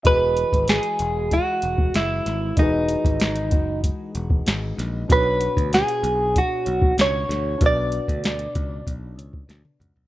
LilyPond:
<<
  \new Staff \with { instrumentName = "Clean electric guitar" } { \time 4/4 \key b \major \tempo 4 = 95 b'4 gis'4 fis'4 e'4 | dis'2 r2 | b'4 gis'4 fis'4 cis''4 | d''2 r2 | }
  \new Staff \with { instrumentName = "Upright piano" } { \time 4/4 \key b \major <fis' gis' b' dis''>1 | <dis' fis' gis' b'>1 | <d' fis' b' cis''>1 | <d' fis' b' d''>1 | }
  \new Staff \with { instrumentName = "Clean electric guitar" } { \time 4/4 \key b \major <e fis'>4 gis8 fis'8 gis8 fis'8 gis4 | <e fis'>8 dis'8 gis8 fis'8 gis8 fis'8 gis8 dis'8 | <b, cis''>8 fis'8 d'8 cis''8 d'8 cis''8 d'8 fis'8 | b,8 fis'8 d'4 d'8 cis''8 d'8 fis'8 | }
  \new Staff \with { instrumentName = "Picked electric bass" } { \clef bass \time 4/4 \key b \major e,,8. gis,,8 r16 e,,8. r16 e,,8 fis,,8 gis,,8 | e,,8. gis,,8. fis,,8. r16 e,,8 gis,,8 ais,,8 | b,,8. d,8 r16 b,,8. r16 b,,8 cis,8 d,8 | b,,8. d,8. cis,8 b,,8 cis,8 d,16 r16 cis,16 b,,16 | }
  \new DrumStaff \with { instrumentName = "Drums" } \drummode { \time 4/4 <hh bd>8 hh16 <hh bd>16 <hh sn>16 hh16 hh8 <hh bd>8 hh16 bd16 <hh sn>8 <hh sn>8 | <hh bd>8 hh16 <hh bd>16 <hh sn>16 hh16 <hh bd>8 <hh bd>8 hh16 bd16 <hh sn>8 <hh sn>8 | <hh bd>8 hh16 <hh bd>16 <hh sn>16 hh16 hh8 <hh bd>8 hh16 bd16 <hh sn>8 <hh sn>8 | <hh bd>8 hh16 <hh bd>16 <hh sn>16 hh16 <hh bd>8 <hh bd>8 hh16 bd16 <hh sn>16 tommh16 <hh toml>16 tomfh16 | }
>>